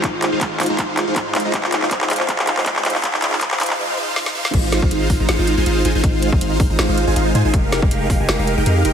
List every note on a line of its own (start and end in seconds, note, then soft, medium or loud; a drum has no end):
0.04 0.30 G#3 medium
0.04 0.30 F4 medium
0.04 0.30 C5 medium
0.04 kick loud
0.04 clap medium
0.04 closed hi-hat medium
0.22 clap medium
0.22 closed hi-hat medium
0.32 0.40 G#1 medium
0.32 0.39 G#3 medium
0.32 0.39 D#4 medium
0.32 0.39 F4 medium
0.32 0.39 C5 medium
0.32 0.39 F5 medium
0.41 0.57 G#3 medium
0.41 0.57 D#4 medium
0.41 0.57 F4 medium
0.41 0.57 F5 medium
0.41 kick loud
0.41 clap medium
0.41 closed hi-hat medium
0.60 0.68 G#1 loud
0.60 0.68 G#3 medium
0.60 0.67 D#4 medium
0.60 0.67 F4 medium
0.60 0.68 C5 medium
0.60 0.68 F5 loud
0.60 clap medium
0.60 closed hi-hat medium
0.60 open hi-hat medium
0.66 0.77 G#1 loud
0.66 0.77 G#3 medium
0.66 0.77 D#4 medium
0.66 0.77 F4 medium
0.66 0.77 C5 medium
0.66 0.77 A#5 medium
0.66 closed hi-hat medium
0.78 1.05 D#4 medium
0.78 1.05 F4 medium
0.78 1.05 C5 medium
0.78 1.05 F5 medium
0.78 kick loud
0.78 clap medium
0.78 closed hi-hat medium
0.97 clap medium
0.97 closed hi-hat medium
1.07 1.14 G#1 loud
1.07 1.14 G#3 medium
1.07 1.14 D#4 medium
1.07 1.14 F4 medium
1.07 1.14 C5 medium
1.07 1.14 F5 medium
1.16 1.36 G#2 loud
1.16 1.32 G#3 medium
1.16 1.32 D#4 medium
1.16 1.32 F4 medium
1.16 1.32 C5 medium
1.16 1.32 F5 medium
1.16 kick medium
1.16 clap medium
1.16 closed hi-hat medium
1.35 1.43 G#1 loud
1.35 1.43 G#3 medium
1.35 1.43 D#4 medium
1.35 1.43 F4 medium
1.35 1.43 C5 medium
1.35 1.43 F5 loud
1.35 clap loud
1.35 closed hi-hat medium
1.40 closed hi-hat medium
1.45 1.52 F1 loud
1.45 1.52 G#3 medium
1.45 1.52 D#4 medium
1.45 1.52 F4 medium
1.45 1.52 C5 medium
1.45 1.52 A#5 medium
1.53 1.80 F1 loud
1.53 kick loud
1.53 clap medium
1.53 closed hi-hat medium
1.64 clap medium
1.72 clap medium
1.72 closed hi-hat medium
1.82 1.89 F1 medium
1.82 1.89 G#3 medium
1.82 1.89 D#4 medium
1.82 1.89 F4 medium
1.82 1.89 C5 medium
1.82 1.89 F5 medium
1.82 clap medium
1.91 2.18 G#3 medium
1.91 2.18 D#4 medium
1.91 2.18 F4 medium
1.91 2.18 C5 medium
1.91 2.18 F5 medium
1.91 kick medium
1.91 clap loud
1.91 closed hi-hat medium
2.01 clap medium
2.10 clap loud
2.10 closed hi-hat medium
2.10 open hi-hat loud
2.16 2.27 F1 loud
2.16 clap medium
2.16 closed hi-hat medium
2.20 2.27 G#3 medium
2.20 2.27 D#4 medium
2.20 2.27 F4 medium
2.20 2.27 C5 medium
2.20 2.27 F5 medium
2.29 2.55 F1 loud
2.29 2.55 G#3 medium
2.29 2.55 D#4 medium
2.29 2.55 F4 medium
2.29 2.55 C5 medium
2.29 2.55 F5 medium
2.29 kick loud
2.29 clap medium
2.29 closed hi-hat medium
2.39 clap medium
2.47 clap medium
2.47 closed hi-hat medium
2.57 2.68 F1 loud
2.57 2.64 G#3 medium
2.57 2.64 D#4 medium
2.57 2.64 F4 medium
2.57 2.64 C5 medium
2.57 2.64 F5 medium
2.57 clap medium
2.66 2.93 F2 loud
2.66 kick loud
2.66 clap loud
2.66 closed hi-hat medium
2.76 clap medium
2.85 clap loud
2.85 closed hi-hat medium
2.90 closed hi-hat medium
2.95 3.02 F2 loud
2.95 3.02 G#3 medium
2.95 3.02 D#4 medium
2.95 3.02 F4 medium
2.95 3.02 C5 medium
2.95 3.02 F5 medium
2.95 clap medium
3.03 3.21 A#1 medium
3.03 3.21 G#3 medium
3.03 3.21 D#4 medium
3.03 3.21 F4 medium
3.03 3.21 C5 medium
3.03 3.21 F5 medium
3.03 kick loud
3.03 clap loud
3.03 closed hi-hat medium
3.14 clap medium
3.22 3.40 A#1 loud
3.22 3.40 G#3 medium
3.22 3.40 D#4 medium
3.22 3.40 F4 medium
3.22 3.40 C5 medium
3.22 3.40 F5 medium
3.22 clap loud
3.22 closed hi-hat medium
3.32 clap medium
3.41 3.58 A#1 loud
3.41 3.59 G#3 medium
3.41 3.59 D#4 medium
3.41 3.59 F4 medium
3.41 3.59 F5 medium
3.41 kick loud
3.41 clap loud
3.41 closed hi-hat medium
3.51 clap medium
3.60 3.77 A#1 loud
3.60 3.77 G#3 medium
3.60 3.77 D#4 medium
3.60 3.77 F4 medium
3.60 3.77 C5 medium
3.60 3.77 F5 loud
3.60 clap loud
3.60 closed hi-hat medium
3.60 open hi-hat medium
3.66 clap medium
3.66 closed hi-hat medium
3.79 3.96 G#3 medium
3.79 3.96 D#4 medium
3.79 3.96 F4 medium
3.79 3.96 C5 medium
3.79 3.96 F5 loud
3.97 4.15 G#3 medium
3.97 4.15 D#4 medium
3.97 4.15 F4 medium
3.97 4.15 C5 medium
3.97 4.15 F5 loud
4.16 4.34 G#3 medium
4.16 4.34 D#4 medium
4.16 4.34 F4 medium
4.16 4.34 C5 medium
4.16 4.34 F5 loud
4.16 snare medium
4.26 snare medium
4.35 4.52 G#3 medium
4.35 4.52 D#4 medium
4.35 4.52 F4 medium
4.35 4.52 C5 medium
4.35 4.52 F5 loud
4.45 snare medium
4.54 4.81 G#1 loud
4.54 4.80 G#3 medium
4.54 4.80 D#4 medium
4.54 4.80 F4 medium
4.54 4.80 C5 medium
4.54 kick loud
4.54 closed hi-hat medium
4.54 crash loud
4.72 snare medium
4.72 closed hi-hat medium
4.82 4.89 G#1 loud
4.82 4.89 G#3 medium
4.82 4.89 D#4 medium
4.82 4.89 F4 medium
4.82 4.89 C5 medium
4.82 4.89 F5 medium
4.82 kick loud
4.91 5.08 G#1 loud
4.91 5.08 G#3 medium
4.91 5.08 D#4 medium
4.91 5.07 F4 medium
4.91 5.08 C5 medium
4.91 5.07 F5 medium
4.91 closed hi-hat medium
5.10 5.18 G#1 loud
5.10 5.18 G#3 medium
5.10 5.18 D#4 medium
5.10 5.18 C5 medium
5.10 kick medium
5.10 open hi-hat medium
5.20 5.27 G#1 loud
5.20 5.27 G#3 medium
5.20 5.27 D#4 medium
5.20 5.27 F4 medium
5.20 5.27 C5 medium
5.20 5.27 A#5 medium
5.29 5.37 G#1 loud
5.29 5.37 G#3 medium
5.29 5.37 D#4 medium
5.29 5.37 F4 medium
5.29 5.37 C5 medium
5.29 5.37 F5 medium
5.29 snare loud
5.29 closed hi-hat medium
5.39 5.56 G#1 loud
5.39 5.55 G#3 medium
5.39 5.55 D#4 medium
5.39 5.55 F4 medium
5.39 5.55 C5 medium
5.39 5.55 F5 medium
5.47 closed hi-hat medium
5.57 5.65 G#1 loud
5.57 5.64 G#3 medium
5.57 5.64 D#4 medium
5.57 5.64 F4 medium
5.57 5.64 C5 medium
5.57 5.64 G#5 medium
5.66 5.83 G#1 loud
5.66 5.83 G#3 medium
5.66 5.83 D#4 medium
5.66 5.83 F4 medium
5.66 5.83 C5 medium
5.66 5.83 F5 medium
5.66 closed hi-hat medium
5.85 5.93 G#1 loud
5.85 5.93 G#3 medium
5.85 5.93 D#4 medium
5.85 5.93 F4 medium
5.85 5.93 C5 medium
5.85 5.93 G#5 loud
5.85 closed hi-hat medium
5.95 6.02 G#1 loud
5.95 6.02 G#3 medium
5.95 6.02 D#4 medium
5.95 6.02 F4 medium
5.95 6.02 C5 medium
5.95 6.02 G#5 medium
6.04 6.31 G#1 loud
6.04 6.30 G#3 medium
6.04 6.30 D#4 medium
6.04 6.30 F4 medium
6.04 6.30 C5 medium
6.04 6.30 F5 medium
6.04 kick loud
6.04 closed hi-hat medium
6.22 closed hi-hat medium
6.32 kick loud
6.41 6.58 G#1 loud
6.41 6.58 G#3 medium
6.41 6.58 D#4 medium
6.41 6.58 F4 medium
6.41 6.58 C5 medium
6.41 6.58 F5 medium
6.41 closed hi-hat medium
6.60 6.68 G#3 medium
6.60 6.68 F4 medium
6.60 6.68 C5 medium
6.60 6.68 F5 loud
6.60 kick loud
6.60 open hi-hat medium
6.70 6.77 G#1 loud
6.70 6.77 G#3 medium
6.70 6.77 D#4 medium
6.70 6.77 F4 medium
6.70 6.77 C5 medium
6.70 6.77 A#5 loud
6.79 6.87 G#1 loud
6.79 6.87 G#3 medium
6.79 6.87 D#4 medium
6.79 6.87 F4 medium
6.79 6.87 C5 medium
6.79 6.87 F5 medium
6.79 snare loud
6.79 closed hi-hat medium
6.89 7.05 G#1 loud
6.89 7.05 G#3 medium
6.89 7.05 D#4 medium
6.89 7.05 F4 medium
6.89 7.05 C5 medium
6.89 7.05 F5 medium
6.98 closed hi-hat medium
7.07 7.14 G#1 loud
7.07 7.14 G#3 medium
7.07 7.14 D#4 medium
7.07 7.14 F4 medium
7.07 7.14 C5 medium
7.07 7.14 G#5 medium
7.16 7.33 G#1 loud
7.16 7.33 G#3 medium
7.16 7.33 D#4 medium
7.16 7.33 F4 medium
7.16 7.33 C5 medium
7.16 7.33 F5 medium
7.16 closed hi-hat medium
7.35 7.43 G#2 loud
7.35 7.43 G#3 medium
7.35 7.43 D#4 medium
7.35 7.43 F4 medium
7.35 7.43 C5 medium
7.35 7.43 G#5 loud
7.35 closed hi-hat medium
7.45 7.52 G#1 loud
7.45 7.52 G#3 medium
7.45 7.52 D#4 medium
7.45 7.52 F4 medium
7.45 7.52 C5 medium
7.45 7.52 G#5 medium
7.54 7.80 G#3 medium
7.54 7.80 D#4 medium
7.54 7.80 G4 medium
7.54 7.80 A#4 medium
7.54 7.80 F5 medium
7.54 kick loud
7.54 closed hi-hat medium
7.72 snare medium
7.72 closed hi-hat medium
7.82 7.89 F1 medium
7.82 7.89 G#3 medium
7.82 7.89 D#4 medium
7.82 7.89 G4 medium
7.82 7.89 A#4 medium
7.82 7.89 F5 medium
7.82 kick loud
7.91 8.08 F1 loud
7.91 8.07 G#3 medium
7.91 8.07 D#4 medium
7.91 8.07 G4 medium
7.91 8.07 A#4 medium
7.91 8.07 F5 medium
7.91 closed hi-hat medium
8.10 8.18 F1 medium
8.10 8.18 G#3 medium
8.10 8.18 D#4 medium
8.10 8.18 G4 medium
8.10 8.18 A#4 medium
8.10 8.18 F5 loud
8.10 kick medium
8.10 open hi-hat medium
8.20 8.27 F1 loud
8.20 8.27 G#3 medium
8.20 8.27 D#4 medium
8.20 8.27 G4 medium
8.20 8.27 A#4 medium
8.20 8.27 G#5 loud
8.29 8.37 F1 loud
8.29 8.37 G#3 medium
8.29 8.37 D#4 medium
8.29 8.37 G4 medium
8.29 8.37 A#4 medium
8.29 8.37 F5 loud
8.29 snare loud
8.29 closed hi-hat medium
8.39 8.56 F1 loud
8.39 8.55 G#3 medium
8.39 8.55 D#4 medium
8.39 8.55 G4 medium
8.39 8.55 A#4 medium
8.39 8.55 F5 medium
8.47 closed hi-hat medium
8.57 8.65 F1 loud
8.57 8.64 G#3 medium
8.57 8.64 D#4 medium
8.57 8.64 G4 medium
8.57 8.64 A#4 medium
8.57 8.64 G5 medium
8.66 8.83 F2 loud
8.66 8.83 G#3 medium
8.66 8.83 D#4 medium
8.66 8.83 G4 medium
8.66 8.83 A#4 medium
8.66 8.83 F5 medium
8.66 closed hi-hat medium
8.85 8.93 F1 loud
8.85 8.93 G#3 medium
8.85 8.93 D#4 medium
8.85 8.93 G4 medium
8.85 8.93 A#4 medium
8.85 8.93 G5 loud
8.85 closed hi-hat medium